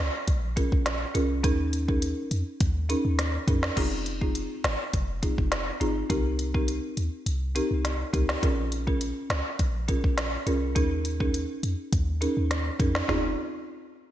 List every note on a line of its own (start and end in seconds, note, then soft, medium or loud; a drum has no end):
0.00 0.10 C#2 loud
0.28 0.62 A#1 loud
0.28 kick loud
0.28 closed hi-hat medium
0.56 0.71 C#4 medium
0.56 0.71 F4 medium
0.56 0.71 G#4 medium
0.56 0.71 A#4 medium
0.56 kick medium
0.56 closed hi-hat medium
0.72 1.05 A#1 medium
0.72 kick loud
0.86 cross-stick medium
0.86 snare loud
0.86 closed hi-hat medium
1.14 1.45 C2 loud
1.14 1.41 C#4 medium
1.14 1.42 F4 medium
1.14 1.42 G#4 medium
1.14 1.42 A#4 medium
1.14 closed hi-hat medium
1.44 2.14 D#2 loud
1.44 1.85 C#4 loud
1.44 1.85 D#4 medium
1.44 1.85 G#4 medium
1.44 1.85 A#4 loud
1.44 kick loud
1.44 closed hi-hat medium
1.73 closed hi-hat medium
1.88 2.01 C#4 medium
1.88 2.01 D#4 medium
1.88 2.01 G#4 medium
1.88 2.01 A#4 medium
1.88 kick medium
2.02 closed hi-hat medium
2.31 2.43 F2 medium
2.31 closed hi-hat medium
2.60 2.95 D#2 loud
2.60 kick loud
2.60 closed hi-hat medium
2.89 3.04 C#4 medium
2.89 3.04 D#4 medium
2.89 3.04 G#4 medium
2.89 3.04 A#4 medium
2.89 closed hi-hat medium
3.05 3.38 D#2 loud
3.19 cross-stick medium
3.19 snare medium
3.19 closed hi-hat medium
3.48 3.70 F2 medium
3.48 3.75 C#4 medium
3.48 3.75 D#4 medium
3.48 3.75 G#4 medium
3.48 3.75 A#4 medium
3.48 kick loud
3.48 closed hi-hat medium
3.63 cross-stick loud
3.63 snare loud
3.77 4.47 F1 loud
3.77 4.18 C4 medium
3.77 4.18 D#4 medium
3.77 4.18 F4 medium
3.77 4.18 G#4 loud
3.77 kick loud
3.77 closed hi-hat medium
3.77 crash medium
4.06 closed hi-hat soft
4.21 4.34 C4 medium
4.21 4.34 D#4 medium
4.21 4.34 F4 medium
4.21 4.34 G#4 medium
4.21 kick medium
4.35 closed hi-hat medium
4.64 4.76 G#1 loud
4.64 cross-stick medium
4.64 snare loud
4.64 closed hi-hat medium
4.93 5.28 F1 loud
4.93 kick medium
4.93 closed hi-hat medium
5.22 5.37 C4 medium
5.22 5.37 D#4 medium
5.22 5.37 F4 medium
5.22 5.37 G#4 medium
5.22 kick medium
5.22 closed hi-hat medium
5.38 5.71 F1 medium
5.38 kick medium
5.52 cross-stick medium
5.52 snare loud
5.52 closed hi-hat medium
5.81 6.03 G1 medium
5.81 6.08 C4 medium
5.81 6.08 D#4 medium
5.81 6.08 F4 medium
5.81 6.08 G#4 medium
5.81 closed hi-hat medium
6.10 6.80 C2 loud
6.10 6.51 C4 medium
6.10 6.51 D#4 medium
6.10 6.51 G4 medium
6.10 6.51 A#4 loud
6.10 kick loud
6.10 closed hi-hat medium
6.39 closed hi-hat medium
6.54 6.67 C4 medium
6.54 6.67 D#4 medium
6.54 6.67 G4 medium
6.54 6.67 A#4 medium
6.54 kick medium
6.68 closed hi-hat medium
6.97 7.09 D#2 medium
6.97 closed hi-hat medium
7.26 7.61 C2 loud
7.26 closed hi-hat medium
7.55 7.70 C4 medium
7.55 7.70 D#4 medium
7.55 7.70 G4 medium
7.55 7.70 A#4 medium
7.55 closed hi-hat medium
7.71 8.04 C2 medium
7.85 snare medium
7.85 closed hi-hat medium
8.13 8.36 C#2 medium
8.13 8.40 C4 medium
8.13 8.40 D#4 medium
8.13 8.41 G4 medium
8.13 8.41 A#4 medium
8.13 kick loud
8.13 closed hi-hat medium
8.29 cross-stick medium
8.29 snare loud
8.43 9.13 A#1 loud
8.43 8.84 C#4 medium
8.43 8.84 F4 medium
8.43 8.84 G#4 medium
8.43 8.84 A#4 loud
8.43 kick loud
8.43 closed hi-hat medium
8.72 closed hi-hat medium
8.87 9.00 C#4 medium
8.87 9.00 F4 medium
8.87 9.00 G#4 medium
8.87 9.00 A#4 medium
8.87 kick medium
9.01 closed hi-hat medium
9.30 9.42 C#2 loud
9.30 cross-stick medium
9.30 snare loud
9.30 closed hi-hat medium
9.59 9.94 A#1 loud
9.59 kick loud
9.59 closed hi-hat medium
9.88 10.03 C#4 medium
9.88 10.03 F4 medium
9.88 10.03 G#4 medium
9.88 10.03 A#4 medium
9.88 kick medium
9.88 closed hi-hat medium
10.04 10.37 A#1 medium
10.04 kick loud
10.18 cross-stick medium
10.18 snare loud
10.18 closed hi-hat medium
10.46 10.77 C2 medium
10.46 10.73 C#4 medium
10.46 10.74 F4 medium
10.46 10.74 G#4 medium
10.46 10.74 A#4 medium
10.46 closed hi-hat medium
10.75 11.46 D#2 loud
10.75 11.16 C#4 medium
10.75 11.17 D#4 medium
10.75 11.17 G#4 medium
10.75 11.17 A#4 loud
10.75 kick loud
10.75 closed hi-hat medium
11.05 closed hi-hat medium
11.20 11.33 C#4 medium
11.20 11.33 D#4 medium
11.20 11.33 G#4 medium
11.20 11.33 A#4 medium
11.20 kick medium
11.34 closed hi-hat medium
11.63 11.75 F2 medium
11.63 closed hi-hat medium
11.93 12.27 D#2 loud
11.93 kick medium
11.93 closed hi-hat medium
12.21 12.36 C#4 medium
12.21 12.36 D#4 medium
12.21 12.36 G#4 medium
12.21 12.36 A#4 medium
12.21 closed hi-hat medium
12.37 12.70 D#2 medium
12.51 cross-stick medium
12.51 snare medium
12.51 closed hi-hat medium
12.79 13.02 F2 medium
12.79 13.06 C#4 medium
12.79 13.07 D#4 medium
12.79 13.07 G#4 medium
12.79 13.07 A#4 medium
12.79 kick loud
12.79 closed hi-hat medium
12.95 cross-stick medium
12.95 snare loud
13.08 13.36 F1 loud
13.08 13.31 C4 medium
13.08 13.31 D#4 medium
13.08 13.31 F4 medium
13.08 13.31 G#4 medium
13.08 snare loud
13.08 floor tom loud